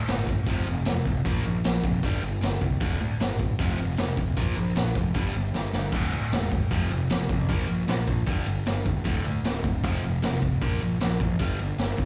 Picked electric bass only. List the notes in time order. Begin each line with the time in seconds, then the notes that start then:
0.09 G1
0.47 F1
0.67 F1
0.86 F1
1.05 D1
1.25 A#1
1.45 A#1
1.65 A#1
1.84 F1
2.03 G1
2.23 G1
2.43 G1
2.62 C2
2.81 D1
3.01 D2
3.21 G1
3.59 F1
3.79 F1
3.98 F1
4.18 D1
4.37 A#1
4.57 A#1
4.76 A#1
4.96 F1
5.15 G1
5.35 G1
5.54 G1
5.74 G1
5.93 D1
6.12 D2
6.32 E1
6.71 F1
6.90 F1
7.10 F1
7.30 A1
7.49 A#1
7.69 A#1
7.88 A#1
8.08 A#1
8.28 G1
8.46 G1
8.66 G1
8.86 E1
9.05 D1
9.24 D2
9.44 D1
9.83 F1
10.03 F1
10.22 F1
10.42 D1
10.62 A#1
10.82 A#1
11.01 A#1
11.20 A1
11.40 G1
11.59 G1
11.79 G1
11.98 G1